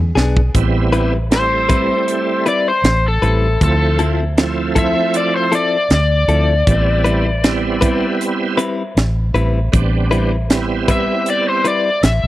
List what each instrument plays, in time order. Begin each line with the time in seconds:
Already playing: fingered electric bass E2
0.15 fingered electric bass B1, clean electric guitar B3 D4 G#4, snare
0.37 kick
0.54 fingered electric bass A1, tonewheel organ G3 B3 C4 E4, kick, closed hi-hat
0.93 clean electric guitar G3 C4 E4 B4, closed hi-hat
1.31 tonewheel organ G3 A3 C4 E4, electric slide guitar C5, snare, closed hi-hat
1.69 clean electric guitar G3 C4 E4 B4, kick, closed hi-hat
2.08 closed hi-hat
2.46 clean electric guitar G3 C4 E4 B4, electric slide guitar D5, closed hi-hat
2.68 electric slide guitar C5
2.84 fingered electric bass A1, snare, closed hi-hat
3.08 electric slide guitar A4
3.22 fingered electric bass A1, clean electric guitar G3 C4 E4 B4, closed hi-hat
3.61 fingered electric bass D2, tonewheel organ F3 A3 C4 E4, electric slide guitar A4, kick, closed hi-hat
3.99 clean electric guitar F3 C4 E4 A4, closed hi-hat
4.37 tonewheel organ F3 A3 C4 E4, snare, closed hi-hat
4.75 clean electric guitar F3 C4 E4 A4, electric slide guitar E5, kick, closed hi-hat
5.14 electric slide guitar D5, closed hi-hat
5.36 electric slide guitar C5
5.52 clean electric guitar F3 C4 E4 A4, electric slide guitar D5, closed hi-hat
5.90 fingered electric bass D2, electric slide guitar D5, snare, closed hi-hat
6.28 fingered electric bass D2, clean electric guitar F3 C4 E4 A4, closed hi-hat
6.67 fingered electric bass A1, tonewheel organ G3 B3 C4 E4, kick, closed hi-hat
7.04 clean electric guitar G3 C4 E4 B4, closed hi-hat
7.44 tonewheel organ G3 B3 C4 E4, snare, closed hi-hat
7.81 clean electric guitar G3 C4 E4 B4, kick, closed hi-hat
8.21 closed hi-hat
8.57 clean electric guitar G3 C4 E4 B4, closed hi-hat
8.97 fingered electric bass A1, snare, closed hi-hat
9.34 fingered electric bass A1, clean electric guitar G3 C4 E4 B4, closed hi-hat
9.72 fingered electric bass A1, tonewheel organ G3 B3 C4 D4, kick, closed hi-hat
10.11 clean electric guitar G3 C4 E4 B4, closed hi-hat
10.50 tonewheel organ G3 B3 C4 E4, snare, closed hi-hat
10.88 clean electric guitar G3 C4 E4 B4, electric slide guitar E5, kick, closed hi-hat
11.26 electric slide guitar D5, closed hi-hat
11.49 electric slide guitar C5
11.64 clean electric guitar G3 C4 E4 B4, electric slide guitar D5, closed hi-hat
12.03 fingered electric bass A1, electric slide guitar E5, snare, closed hi-hat
12.24 fingered electric bass B1